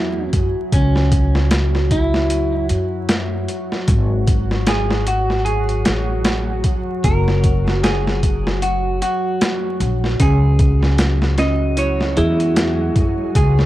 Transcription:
Already playing: upright bass E2, ambient pad F#3 F#4, clean electric guitar E4
0.33 upright bass F#2, kick, closed hi-hat
0.73 upright bass C#2, clean electric guitar C#4, kick, closed hi-hat
0.96 snare
1.12 kick, closed hi-hat
1.35 snare
1.51 snare, closed hi-hat
1.75 snare
1.91 clean electric guitar E4, kick, closed hi-hat
2.14 snare
2.30 closed hi-hat
2.70 upright bass F#2, closed hi-hat
3.09 snare, closed hi-hat
3.48 closed hi-hat
3.72 snare
3.88 upright bass G#1, kick, closed hi-hat
4.27 kick, closed hi-hat
4.51 snare
4.67 clean electric guitar G#4, snare, closed hi-hat
4.90 snare
5.06 clean electric guitar F#4, closed hi-hat
5.30 snare
5.45 clean electric guitar G#4, closed hi-hat
5.69 closed hi-hat
5.85 upright bass A1, snare, closed hi-hat
6.25 snare, closed hi-hat
6.64 kick, closed hi-hat
7.04 upright bass F#1, clean electric guitar A#4, kick, closed hi-hat
7.28 snare
7.43 kick, closed hi-hat
7.67 snare
7.83 clean electric guitar G#4, snare, closed hi-hat
8.07 snare
8.23 kick, closed hi-hat
8.47 snare
8.62 clean electric guitar F#4, closed hi-hat
9.02 clean electric guitar F#4, closed hi-hat
9.41 snare, closed hi-hat
9.80 upright bass A#1, closed hi-hat
10.04 snare
10.19 upright bass C#2, ambient pad F#3 F#4, synth texture G#3 G#4, music box C#4, clean electric guitar G#4, kick, closed hi-hat
10.59 kick, closed hi-hat
10.83 snare
10.98 snare, closed hi-hat
11.22 snare
11.38 music box C#4, clean electric guitar D#5, snare, closed hi-hat
11.77 music box E4, clean electric guitar C#5, closed hi-hat
12.01 snare
12.17 upright bass E2, clean electric guitar E4, music box G#4, closed hi-hat
12.40 closed hi-hat
12.56 snare, closed hi-hat
12.96 upright bass F#2, kick, closed hi-hat
13.35 upright bass C#2, clean electric guitar G#4, kick, closed hi-hat
13.59 snare

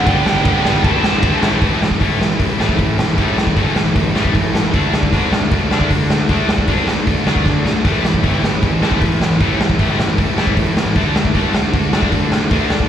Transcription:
0.06 picked electric bass G1, overdriven electric guitar G2 D3 G3 B3 D4, lead electric guitar G5, kick, ride
0.26 picked electric bass G1, snare
0.45 picked electric bass G1, overdriven electric guitar G2 D3 G3 B3 D4, lead electric guitar G5, kick, ride
0.64 picked electric bass G1, overdriven electric guitar G2 D3 G3 B3 D4, snare
0.84 picked electric bass A1, overdriven electric guitar A2 E3 A3 C4 E4, lead electric guitar A5, kick, ride
1.04 snare
1.23 picked electric bass G2, overdriven electric guitar A2 E3 A3 C4 E4, kick, ride
1.41 picked electric bass A1, overdriven electric guitar A2 E3 A3 C4 E4, snare
1.62 picked electric bass A1, overdriven electric guitar A2 E3 A3, distorted electric guitar C4 E4 A4, kick, open hi-hat
1.82 overdriven electric guitar A2 E3, snare
1.91 kick
2.01 picked electric bass G1, overdriven electric guitar A2 E3 A3, kick, open hi-hat
2.19 picked electric bass A1, overdriven electric guitar A2 E3, snare
2.39 picked electric bass A1, overdriven electric guitar A2 E3, distorted electric guitar A3 C4 E4 A4, kick, open hi-hat
2.58 picked electric bass A1, overdriven electric guitar A2 E3 A3, snare
2.69 kick
2.78 picked electric bass A2, overdriven electric guitar A2 E3, kick, open hi-hat
2.98 picked electric bass A1, overdriven electric guitar A2 E3, snare
3.17 picked electric bass A1, overdriven electric guitar A2 E3 A3, distorted electric guitar C4 E4, kick, open hi-hat
3.21 distorted electric guitar A4
3.37 overdriven electric guitar A2 E3, snare
3.47 kick
3.57 picked electric bass G1, overdriven electric guitar A2 E3 A3, kick, open hi-hat
3.76 picked electric bass A1, overdriven electric guitar A2 E3, snare
3.96 picked electric bass A1, overdriven electric guitar A2 E3, distorted electric guitar A3 C4 E4 A4, kick, open hi-hat
4.15 picked electric bass A1, overdriven electric guitar A2 E3 A3, snare
4.25 kick
4.35 picked electric bass A2, overdriven electric guitar A2 E3, kick, open hi-hat
4.54 picked electric bass A1, overdriven electric guitar A2 E3, snare
4.74 picked electric bass D2, overdriven electric guitar D3 A3 D4, distorted electric guitar F#4 A4, kick, open hi-hat
4.94 overdriven electric guitar D3 A3, snare
5.03 kick
5.12 picked electric bass C2, overdriven electric guitar D3 A3 D4, kick, open hi-hat
5.32 picked electric bass D2, overdriven electric guitar D3 A3, snare
5.51 picked electric bass D2, overdriven electric guitar D3 A3, distorted electric guitar D4 F#4 A4, kick, open hi-hat
5.71 picked electric bass D2, overdriven electric guitar D3 A3 D4, snare
5.81 kick
5.91 picked electric bass D3, overdriven electric guitar D3 A3, kick, open hi-hat
6.10 picked electric bass D2, overdriven electric guitar D3 A3, snare
6.29 picked electric bass D2, overdriven electric guitar D3 A3 D4, distorted electric guitar F#4, kick, open hi-hat
6.33 distorted electric guitar A4
6.49 overdriven electric guitar D3 A3, snare
6.58 kick
6.68 picked electric bass C2, overdriven electric guitar D3 A3 D4, kick, open hi-hat
6.88 picked electric bass D2, overdriven electric guitar D3 A3, snare
7.07 picked electric bass D2, overdriven electric guitar D3 A3, distorted electric guitar D4 F#4 A4, kick, open hi-hat
7.26 picked electric bass D2, overdriven electric guitar D3 A3 D4, snare
7.36 kick
7.46 overdriven electric guitar D3 A3, picked electric bass D3, kick, snare
7.66 picked electric bass D2, overdriven electric guitar D3 A3, snare
7.85 picked electric bass A1, overdriven electric guitar A2 E3 A3, distorted electric guitar C4 E4 A4, kick, open hi-hat
8.04 overdriven electric guitar A2 E3, snare
8.14 kick
8.24 picked electric bass G1, overdriven electric guitar A2 E3 A3, kick, open hi-hat
8.43 picked electric bass A1, overdriven electric guitar A2 E3, snare
8.62 picked electric bass A1, overdriven electric guitar A2 E3, distorted electric guitar A3 C4 E4 A4, kick, open hi-hat
8.82 picked electric bass A1, overdriven electric guitar A2 E3 A3, snare
8.92 kick
9.01 overdriven electric guitar A2 E3, picked electric bass A2, kick, open hi-hat
9.21 picked electric bass A1, overdriven electric guitar A2 E3, snare
9.40 picked electric bass A1, overdriven electric guitar A2 E3 A3, distorted electric guitar C4 E4, kick, open hi-hat
9.44 distorted electric guitar A4
9.60 overdriven electric guitar A2 E3, snare
9.70 kick
9.79 picked electric bass G1, overdriven electric guitar A2 E3 A3, kick, open hi-hat
9.99 picked electric bass A1, overdriven electric guitar A2 E3, snare
10.18 picked electric bass A1, overdriven electric guitar A2 E3, distorted electric guitar A3 C4 E4 A4, kick, open hi-hat
10.37 picked electric bass A1, overdriven electric guitar A2 E3 A3, snare
10.47 kick
10.57 overdriven electric guitar A2 E3, picked electric bass A2, kick, open hi-hat
10.77 picked electric bass A1, overdriven electric guitar A2 E3, snare
10.96 picked electric bass D2, overdriven electric guitar D3 A3 D4, distorted electric guitar F#4 A4, kick, open hi-hat
11.16 overdriven electric guitar D3 A3, snare
11.25 kick
11.34 picked electric bass C2, overdriven electric guitar D3 A3 D4, kick, open hi-hat
11.54 picked electric bass D2, overdriven electric guitar D3 A3, snare
11.73 picked electric bass D2, overdriven electric guitar D3 A3, distorted electric guitar D4 F#4 A4, kick, open hi-hat
11.93 picked electric bass D2, overdriven electric guitar D3 A3 D4, snare
12.03 kick
12.12 picked electric bass D3, overdriven electric guitar D3 A3, kick, open hi-hat
12.32 picked electric bass D2, overdriven electric guitar D3 A3, snare
12.51 picked electric bass D2, overdriven electric guitar D3 A3 D4, distorted electric guitar F#4 A4, kick, open hi-hat
12.70 overdriven electric guitar D3 A3, snare
12.80 kick

